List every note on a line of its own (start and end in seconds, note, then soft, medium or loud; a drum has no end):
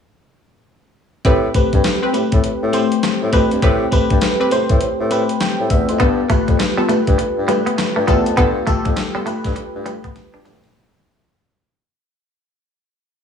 1.25 1.48 A2 loud
1.25 1.53 C4 medium
1.25 1.53 G4 medium
1.25 1.53 B4 loud
1.25 kick loud
1.25 closed hi-hat medium
1.54 1.93 A3 medium
1.54 1.93 C4 medium
1.54 1.93 G4 medium
1.54 1.94 B4 medium
1.54 kick medium
1.54 closed hi-hat medium
1.73 1.82 G2 medium
1.73 kick medium
1.73 closed hi-hat soft
1.84 snare loud
1.84 clap medium
1.84 closed hi-hat medium
2.02 2.13 C4 medium
2.02 2.14 G4 medium
2.02 2.14 B4 medium
2.13 2.22 A2 soft
2.13 2.52 A3 medium
2.13 2.52 C4 medium
2.13 2.52 G4 medium
2.13 2.53 B4 medium
2.13 closed hi-hat medium
2.32 2.41 A2 medium
2.32 kick medium
2.32 closed hi-hat medium
2.44 2.52 A2 soft
2.44 closed hi-hat medium
2.62 2.86 A2 medium
2.73 3.12 A3 loud
2.73 3.12 C4 medium
2.73 3.12 G4 medium
2.73 3.12 C5 loud
2.73 closed hi-hat medium
2.92 closed hi-hat medium
3.03 snare medium
3.03 clap medium
3.03 closed hi-hat medium
3.22 3.31 A2 medium
3.32 3.47 F2 medium
3.32 3.71 A3 medium
3.32 3.71 C4 medium
3.32 3.50 C4 medium
3.32 3.51 G4 medium
3.32 3.71 G4 medium
3.32 3.51 B4 medium
3.32 3.72 B4 loud
3.32 kick medium
3.32 closed hi-hat medium
3.51 3.61 G2 medium
3.51 closed hi-hat soft
3.62 3.86 A2 loud
3.62 3.90 C4 loud
3.62 3.90 G4 medium
3.62 3.91 B4 loud
3.62 kick loud
3.62 closed hi-hat medium
3.91 4.30 A3 medium
3.91 4.31 C4 medium
3.91 4.31 G4 medium
3.91 4.31 B4 loud
3.91 kick medium
3.91 closed hi-hat medium
4.10 4.20 G2 medium
4.10 kick medium
4.10 closed hi-hat soft
4.21 snare loud
4.21 clap medium
4.21 closed hi-hat medium
4.40 4.51 C4 medium
4.40 4.51 G4 medium
4.40 4.51 B4 medium
4.51 4.59 A2 soft
4.51 4.90 A3 medium
4.51 4.90 C4 medium
4.51 4.90 G4 medium
4.51 4.90 C5 loud
4.51 closed hi-hat medium
4.69 4.79 A2 medium
4.69 kick loud
4.69 closed hi-hat medium
4.81 4.89 A2 soft
4.81 closed hi-hat medium
5.00 5.23 A2 medium
5.11 5.49 A3 medium
5.11 5.49 C4 medium
5.11 5.41 G4 medium
5.11 5.41 B4 loud
5.11 closed hi-hat medium
5.29 closed hi-hat medium
5.40 5.69 B4 medium
5.40 5.69 G5 medium
5.40 snare loud
5.40 clap medium
5.40 closed hi-hat medium
5.60 5.68 A2 medium
5.70 5.85 E2 medium
5.70 5.88 G4 medium
5.70 5.88 E5 medium
5.70 kick medium
5.70 closed hi-hat medium
5.89 5.98 F2 medium
5.89 6.17 E4 medium
5.89 6.17 C5 medium
5.89 closed hi-hat medium
6.00 6.24 G2 medium
6.00 6.12 B3 medium
6.00 6.28 B3 loud
6.00 6.28 F4 medium
6.00 6.28 A4 loud
6.00 kick loud
6.00 closed hi-hat medium
6.30 6.42 A3 medium
6.30 6.68 A3 medium
6.30 6.68 F4 medium
6.30 6.69 G4 medium
6.30 6.69 B4 medium
6.30 kick medium
6.30 closed hi-hat medium
6.48 6.57 F2 medium
6.48 muted clean electric guitar stroke soft
6.48 kick medium
6.48 closed hi-hat soft
6.59 muted clean electric guitar stroke soft
6.59 snare loud
6.59 clap medium
6.59 closed hi-hat medium
6.77 6.85 G3 medium
6.77 6.89 B3 medium
6.77 6.89 F4 medium
6.77 6.89 A4 medium
6.89 6.97 G2 soft
6.89 7.01 A3 medium
6.89 7.28 A3 medium
6.89 7.28 F4 medium
6.89 7.28 G4 medium
6.89 7.28 B4 medium
6.89 closed hi-hat medium
7.07 7.17 G2 loud
7.07 kick medium
7.07 closed hi-hat medium
7.18 7.26 G2 soft
7.18 muted clean electric guitar stroke soft
7.18 closed hi-hat medium
7.38 7.61 G2 medium
7.48 7.60 G3 medium
7.48 7.87 A3 medium
7.48 7.87 F4 medium
7.48 7.87 G4 medium
7.48 7.87 B4 medium
7.48 closed hi-hat medium
7.66 7.74 B3 medium
7.66 closed hi-hat medium
7.78 muted clean electric guitar stroke soft
7.78 snare medium
7.78 clap medium
7.78 closed hi-hat medium
7.96 8.06 G2 medium
7.96 8.04 A3 medium
8.07 8.23 E2 medium
8.07 8.46 A3 medium
8.07 8.20 B3 medium
8.07 8.26 B3 medium
8.07 8.46 F4 medium
8.07 8.26 F4 medium
8.07 8.47 G4 medium
8.07 8.26 A4 medium
8.07 8.47 A4 loud
8.07 kick medium
8.07 closed hi-hat medium
8.26 8.35 F2 medium
8.26 closed hi-hat soft
8.37 8.61 G2 loud
8.37 8.50 B3 medium
8.37 8.65 B3 medium
8.37 8.66 F4 medium
8.37 8.66 A4 loud
8.37 kick loud
8.37 closed hi-hat medium
8.67 8.79 A3 medium
8.67 9.06 A3 loud
8.67 9.06 F4 medium
8.67 9.06 G4 medium
8.67 9.06 A4 loud
8.67 kick medium
8.67 closed hi-hat medium
8.85 8.95 F2 medium
8.85 muted clean electric guitar stroke soft
8.85 kick medium
8.85 closed hi-hat medium
8.96 muted clean electric guitar stroke soft
8.96 snare loud
8.96 clap medium
8.96 closed hi-hat medium
9.15 9.23 G3 medium
9.15 9.26 B3 medium
9.15 9.26 F4 medium
9.15 9.27 A4 medium
9.26 9.34 G2 soft
9.26 9.38 A3 medium
9.26 9.65 A3 medium
9.26 9.65 F4 medium
9.26 9.65 G4 medium
9.26 9.66 B4 loud
9.26 closed hi-hat medium
9.44 9.54 G2 loud
9.44 kick medium
9.44 snare medium
9.44 closed hi-hat medium
9.56 9.64 G2 soft
9.56 muted clean electric guitar stroke soft
9.56 closed hi-hat medium
9.75 9.98 G2 medium
9.85 9.98 G3 medium
9.85 10.24 A3 medium
9.85 10.25 F4 medium
9.85 10.25 G4 medium
9.85 10.25 B4 loud
9.85 closed hi-hat medium
10.04 10.12 B3 medium
10.04 kick medium
10.04 closed hi-hat medium
10.16 muted clean electric guitar stroke soft
10.16 snare medium
10.16 closed hi-hat medium
10.34 10.43 G2 medium
10.34 10.41 D4 medium
10.45 10.60 E2 medium
10.45 10.75 A3 medium
10.45 10.58 D4 medium
10.45 10.75 F4 medium
10.45 10.75 G4 medium
10.45 10.76 B4 medium
10.45 snare medium
10.45 closed hi-hat medium
10.64 10.73 F2 medium
10.64 snare medium
10.64 closed hi-hat soft